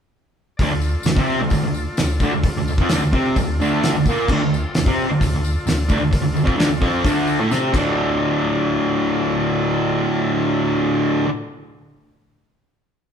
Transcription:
0.57 D2 D3 F4 A4 D5, kick, open hi-hat
0.73 D2
0.81 tambourine
1.03 D2, snare, open hi-hat, tambourine
1.17 C3 C4, kick
1.41 D2
1.50 D2, kick, open hi-hat, tambourine
1.64 D2
1.74 tambourine
1.97 D2, snare, open hi-hat, tambourine
2.20 D2 D3, kick, tambourine
2.34 D2
2.44 muted distorted electric guitar stroke, kick, open hi-hat
2.57 D2
2.68 D2, tambourine
2.78 F2 F3, kick
2.89 D2, snare, open hi-hat, tambourine
2.93 D3
3.03 D2
3.13 C3 C4, kick
3.36 D2, kick, open hi-hat, tambourine
3.60 D2 D3, tambourine
3.83 snare, open hi-hat, tambourine
3.97 D2
4.06 A#2 A#3, kick, tambourine
4.28 D2 D3 F4 A4 D5, kick, crash
4.43 D2
4.54 tambourine
4.75 D2, snare, open hi-hat, tambourine
4.86 C3 C4, kick
4.99 tambourine
5.10 D2
5.21 D2, kick, open hi-hat, tambourine
5.35 D2
5.44 tambourine
5.67 D2, snare, open hi-hat, tambourine
5.89 D2 D3, kick, tambourine
5.99 D2
6.11 muted distorted electric guitar stroke, kick, open hi-hat, tambourine
6.22 D2
6.34 D2, tambourine
6.44 F2 F3, kick
6.57 D2 D3, snare, open hi-hat, tambourine
6.69 D2
6.81 F2 F3, kick
7.05 D2 D3, kick, open hi-hat, tambourine
7.28 tambourine
7.40 A2 A3
7.51 C3 C4, snare, tambourine
7.73 D2 A2 D3 F4 A4 D5, kick, crash, tambourine

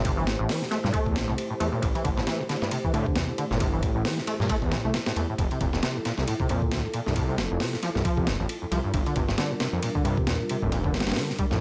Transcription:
Already playing: G1 A3 E4 G4 C5
0.05 C3, kick, ride
0.17 E3
0.27 A1, snare, ride
0.39 A1 A2
0.49 E3, snare, open hi-hat
0.61 A#2, snare
0.71 A3, snare, ride
0.83 G2 A#2, snare
0.93 A3, kick, ride
1.06 E2, kick
1.15 A1 A2, snare, ride
1.28 C2 A2
1.38 ride
1.50 A2
1.60 E2 A3, ride
1.72 A#2
1.82 A1 A2, kick, ride
1.95 E3, ride
2.04 A1 D3, kick, ride
2.17 A1 A2, snare
2.27 E3, snare, ride
2.39 A#2
2.49 D3, snare, ride
2.62 G2, snare
2.71 C3, ride
2.84 E3, kick
2.93 A2 D3, ride
3.06 E2, kick
3.16 E2 C3, snare, ride
3.29 A#2
3.38 D3, ride
3.51 G1 A#2, snare
3.60 C3, kick, ride
3.73 E3
3.83 A1, kick, ride
3.95 A1 A2
4.05 E3, snare, open hi-hat
4.18 A#2, snare
4.27 A3, ride
4.40 G2 A#2, snare
4.49 A3, kick, ride
4.62 E2, kick
4.72 A1 E3, snare, ride
4.84 C2 A3
4.94 G2, snare, ride
5.06 A2, snare, ride
5.16 E2 A3, ride
5.29 A2
5.38 F1 F2 F4 A4, kick, ride
5.51 C3, ride
5.61 F1 A#2, kick, ride
5.73 F1 F2, snare
5.83 C3, snare, ride
5.96 G2
6.05 A#2, snare, ride
6.18 C2, snare
6.28 A2, ride
6.40 C3, kick
6.49 F2 A#2, ride
6.62 D2, kick
6.72 D2 A2, snare, ride
6.84 G2
6.94 A#2, ride
7.06 C2 G2, snare
7.16 A2, kick, ride
7.29 C3
7.38 F1, snare, ride
7.51 F1 F2
7.60 C3, snare, open hi-hat
7.73 G2, snare
7.83 F3, snare, ride
7.95 C2 G2, snare
8.05 F3, kick, ride
8.17 C2, kick
8.27 F1 F2, snare, ride
8.40 A1 F2
8.49 ride
8.62 F2
8.71 C2 F3, ride
8.84 G2
8.94 G1 G2 G3 D4 A#4, kick, ride
9.06 D3, ride
9.16 G1 C3, kick, ride
9.28 G1 G2, snare
9.38 D3, snare, ride
9.50 A2
9.60 C3, snare, ride
9.73 F2
9.83 A#2, ride
9.95 D3, kick
10.04 G2 C3, ride
10.17 E2, kick
10.27 E2 A#2, snare, ride
10.40 A2
10.49 C3, ride
10.62 F1 A2, kick
10.72 A#2, ride
10.84 D3, kick
10.93 G1, snare, ride
11.00 snare, ride
11.06 G1 G2, snare, ride
11.12 snare, ride
11.16 D3, snare, open hi-hat
11.29 A2, snare
11.39 G3, kick, ride
11.51 F2 A2, snare

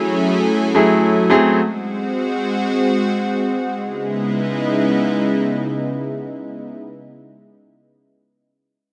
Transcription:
Already playing: F#3 A3 C#4 E4 G#4
0.75 F#3 A3 E4 G#4
1.30 F#3 G#3 A3 C4 F#4 G#4
3.77 C#3 G#3 B3 D#4 E4

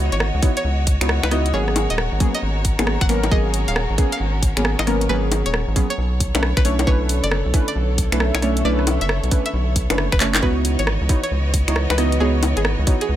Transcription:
Already playing: E3 B3 D#4 E4 F#4 C#5 D#5 F#5
0.12 G#1 C#5, closed hi-hat
0.20 cross-stick
0.34 C#2
0.42 B3 D#4 E4 F#4 C#5, kick, open hi-hat
0.57 C#5, closed hi-hat
0.65 C#2
0.87 kick, open hi-hat
1.01 C#2 B3 D#4 E4 F#4 C#5, finger snap, closed hi-hat
1.09 cross-stick
1.23 C#2 B4, finger snap, closed hi-hat, high bongo
1.31 B3 D#4 E4 F#4 D#5, cross-stick, open hi-hat
1.46 closed hi-hat
1.53 G#1 F#3 A#3 B3 C#4 G#4 A#4 C#5
1.68 A#5, cross-stick
1.76 open hi-hat, high bongo
1.90 D#1 D#5, closed hi-hat
1.98 cross-stick
2.12 G#1
2.20 F#3 A#3 B3 C#4 G#4, kick, open hi-hat
2.26 C#5
2.35 D#5, closed hi-hat
2.43 G#1
2.65 kick, open hi-hat
2.79 G#1 F#3 A#3 B3 C#4 G#4, finger snap, closed hi-hat, high bongo
2.87 cross-stick
3.01 G#1 F#5, finger snap, kick, closed hi-hat
3.09 F#3 A#3 B3 C#4 A#4, finger snap, open hi-hat
3.24 closed hi-hat, high bongo
3.31 G#1 F#3 A#3 B3 C#4 G#4 D#5, kick
3.54 open hi-hat
3.68 D#1 F5, closed hi-hat
3.76 cross-stick
3.90 G#1
3.98 F#3 A#3 B3 C#4 G#4, kick, open hi-hat
4.12 F5, closed hi-hat
4.20 G#1
4.43 kick, open hi-hat
4.57 G#1 F#3 A#3 B3 C#4 G#4, finger snap, closed hi-hat
4.65 cross-stick
4.79 G#1 D#5, finger snap, closed hi-hat, high bongo
4.87 F#3 A#3 B3 C#4 A#4, cross-stick, open hi-hat
5.01 closed hi-hat
5.09 G#1 F#3 A#3 B3 C#4 G#4 B4
5.32 open hi-hat, high bongo
5.46 D#1 C#5, closed hi-hat
5.54 cross-stick
5.68 G#1
5.76 F#3 A#3 B3 C#4 G#4, kick, open hi-hat
5.90 C#5, closed hi-hat
5.98 B1 D3 B3 A4 C#5
6.20 kick, open hi-hat
6.35 B1 A3 C#4 D4 E4 B4, finger snap, closed hi-hat, high bongo
6.39 A4, cross-stick
6.57 B1 B4, finger snap, kick, closed hi-hat
6.65 A3 C#4 D4 E4 C#5, open hi-hat
6.79 closed hi-hat, high bongo
6.87 B1 A3 C#4 D4 E4 B4 C#5, kick
7.09 open hi-hat
7.24 F#1 D5, closed hi-hat
7.31 cross-stick
7.46 B1
7.54 A3 C#4 D4 E4 B4, kick, open hi-hat
7.68 D5, closed hi-hat
7.76 B1 C#5
7.81 E5
7.98 kick, open hi-hat
8.12 B1 A3 C#4 D4 E4 B4, finger snap, closed hi-hat
8.20 cross-stick
8.35 B1 C#5, finger snap, closed hi-hat, high bongo
8.42 A3 C#4 D4 E4 C#5, cross-stick, open hi-hat
8.57 closed hi-hat
8.65 B1 A3 C#4 D4 E4 B4 D5
8.79 cross-stick
8.87 open hi-hat, high bongo
9.01 F#1 E5, closed hi-hat
9.09 cross-stick
9.23 B1, closed hi-hat
9.31 A3 C#4 D4 E4 B4, kick, open hi-hat
9.46 E5, closed hi-hat
9.54 B1
9.76 kick, open hi-hat
9.90 F#1 A3 C#4 D4 E4 B4, finger snap, closed hi-hat, high bongo
9.98 cross-stick
10.12 F#1 B4, finger snap, kick, closed hi-hat
10.20 A3 C#4 D4 E4 C#5, clap, open hi-hat
10.35 clap, closed hi-hat, high bongo
10.42 C#2 E3 B3 D#4 E4 F#4 B4 C#5 D#5, kick
10.65 open hi-hat
10.79 G#1 C#5, closed hi-hat
10.87 cross-stick
11.01 C#2 B4
11.09 B3 D#4 E4 F#4 C#5, kick, open hi-hat
11.24 C#5 D#5, closed hi-hat
11.31 C#2
11.38 F#5
11.54 kick, open hi-hat
11.68 C#2 B3 D#4 E4 F#4 C#5, finger snap, closed hi-hat
11.76 cross-stick
11.90 C#2 B4, finger snap, closed hi-hat, high bongo
11.98 B3 D#4 E4 F#4 D#5, cross-stick, open hi-hat
12.12 closed hi-hat
12.20 C#2 B3 D#4 E4 F#4 G#4 C#5
12.43 open hi-hat, high bongo
12.57 G#1 G#4, closed hi-hat
12.65 cross-stick
12.79 C#2
12.87 B3 D#4 E4 F#4 C#5, kick, open hi-hat
13.01 G#4, closed hi-hat
13.09 C#2

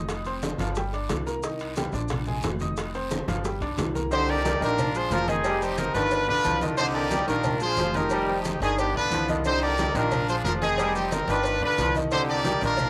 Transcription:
Already playing: F1 D#4 D#5 D#6
0.09 high bongo, high conga, high timbale, long guiro, maracas
0.25 C4 C5 C6, high conga, high timbale, maracas
0.42 high bongo, high conga, low timbale, short guiro, maracas
0.58 G1 F3 F4 F5, high bongo, high conga, high timbale, short guiro, maracas
0.75 G3 G4 G5, high bongo, high conga, long guiro, maracas
0.93 D4 D5 D6, high bongo, high conga, high timbale, maracas
1.09 C2, high bongo, low bongo, high conga, high timbale, low timbale, short guiro, maracas
1.26 A#3 A#4 A#5, high bongo, short guiro, maracas
1.43 D#3 D#4 D#5, high bongo, high conga, long guiro, maracas
1.59 high conga, high timbale, maracas
1.76 G3 G4 G5, high bongo, high conga, high timbale, low timbale, short guiro, maracas
1.92 A#1 D4 D5 D6, high conga, short guiro, maracas
2.08 high bongo, high conga, low conga, high timbale, long guiro, maracas
2.25 G#3 G#4 G#5, high conga, low conga, maracas
2.42 F1, high bongo, low bongo, high conga, high timbale, low timbale, short guiro, maracas
2.59 D#4 D#5 D#6, high conga, short guiro, maracas
2.77 high bongo, high conga, high timbale, long guiro, maracas
2.94 C4 C5 C6, high conga, high timbale, maracas
3.11 high bongo, high conga, low timbale, short guiro, maracas
3.28 G1 F3 F4 F5, high bongo, high conga, high timbale, short guiro, maracas
3.44 G3 G4 G5, high bongo, high conga, long guiro, maracas
3.61 B1 D4 D5 D6, high bongo, high conga, high timbale, maracas
3.78 C2, high bongo, low bongo, high conga, high timbale, low timbale, short guiro, maracas
3.95 A#3 A#4 A#5, high bongo, high conga, short guiro, maracas
4.11 C3 D3 C4 D#4 G4 C5 D#5, cowbell, high conga, long guiro, maracas
4.28 G4 A#4 D5, high conga, low agogo
4.45 G3 G4 A#4, cowbell, high conga, low agogo, short guiro, maracas
4.61 A#1 D#3 D4 F4 A#4 D5, cowbell, short guiro, maracas
4.78 cowbell, high conga, low conga, low agogo, long guiro, maracas
4.94 F3 F4 G#4 C5, high conga, maracas
5.10 F1 F3 A#4, cowbell, high conga, low timbale, low agogo, short guiro, maracas
5.28 D#3 C4 D#4 G#4 D#5, cowbell, high conga, low agogo, short guiro, maracas
5.44 G3, cowbell, high conga, low agogo, long guiro, maracas
5.61 F3 G4 C5, high conga, maracas
5.77 A#4, cowbell, high conga, low agogo, short guiro, maracas
5.94 G1 D#3 D4 F4 B4 D5, cowbell, high conga, low agogo, short guiro, maracas
6.11 cowbell, high conga, long guiro, maracas
6.28 B1 D3 D4 F4 B4 D5, high conga, low agogo
6.44 C2 F3, cowbell, high conga, low agogo, short guiro, maracas
6.61 D#3 D#4 D#5, high conga, low agogo, short guiro, maracas
6.77 C3 D3 C4 D#4 G4 C5 D#5, cowbell, high conga, long guiro, maracas
6.94 G4 A#4 D5, high conga, low agogo
7.11 G3 G4 A#4, cowbell, high conga, low agogo, short guiro, maracas
7.27 A#1 D#3 D4 F4 A#4 D5, cowbell, short guiro, maracas
7.43 cowbell, high conga, low conga, low agogo, long guiro, maracas
7.60 F3 F4 G#4 C5, high conga, maracas
7.77 F1 F3, cowbell, high conga, low timbale, low agogo, short guiro, maracas
7.94 D#3 D#4 G4 A#4 D#5, cowbell, high conga, low agogo, short guiro, maracas
8.10 G3, cowbell, high conga, low agogo, long guiro, maracas
8.28 F3 G4 C5, high conga
8.44 cowbell, high conga, low agogo, short guiro, maracas
8.60 G1 D#3 D4 G#4 D5, cowbell, high conga, low agogo, short guiro, maracas
8.78 B3 D4 G4, cowbell, high conga, long guiro, maracas
8.94 B1 D3 D4 F4 B4 D5, high conga, low agogo
9.11 C2 F3, cowbell, high conga, low agogo, short guiro, maracas
9.28 D#3 D#4 D#5, high conga, low agogo, short guiro, maracas
9.44 C3 D3 C4 D#4 G4 C5 D#5, cowbell, high conga, long guiro, maracas
9.62 G4 A#4 D5, high conga, low agogo
9.78 G3 G4 A#4, cowbell, high conga, low agogo, short guiro, maracas
9.95 A#1 D#3 D4 F4 A#4 D5, cowbell, short guiro, maracas
10.11 cowbell, high conga, low conga, low agogo, long guiro, maracas
10.28 F3 F4 G#4 C5, high conga, maracas
10.44 F1 F3 A#4, cowbell, high conga, low timbale, low agogo, short guiro, maracas
10.61 D#3 C4 D#4 G#4 D#5, cowbell, high conga, low agogo, short guiro, maracas
10.78 G3, cowbell, high conga, low agogo, long guiro, maracas
10.95 F3 G4 C5, high conga, maracas
11.11 A#4, cowbell, high conga, low agogo, short guiro, maracas
11.28 G1 D#3 D4 F4 B4 D5, cowbell, high conga, low agogo, short guiro, maracas
11.44 cowbell, high conga, long guiro, maracas
11.61 B1 D3 D4 F4 B4 D5, high conga, low agogo
11.78 C2 F3, cowbell, high conga, low agogo, short guiro, maracas
11.94 D#3 D#4 D#5, high conga, low agogo, short guiro, maracas
12.11 C3 D3 C4 D#4 G4 C5 D#5, cowbell, high conga, long guiro, maracas
12.28 G4 A#4 D5, high conga, low agogo
12.45 G3 G4 A#4, cowbell, high conga, low agogo, short guiro, maracas
12.61 A#1 D#3 D4 F4 A#4 D5, cowbell, short guiro, maracas
12.77 cowbell, high conga, low conga, low agogo, long guiro, maracas

